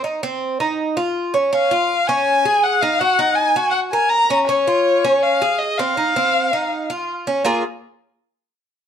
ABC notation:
X:1
M:4/4
L:1/16
Q:1/4=162
K:Bbm
V:1 name="Violin"
z16 | f6 a6 g2 f2 | g4 a4 g2 a2 b3 z | d8 f4 e2 f2- |
f12 z4 | z16 |]
V:2 name="Cuban tres"
E2 C4 E4 F4 D2 | D2 F4 D4 A4 E2 | G2 E4 G4 B4 D2 | D2 F4 D4 A4 C2 |
E2 C4 E4 F4 D2 | [B,FA]2 z12 z2 |]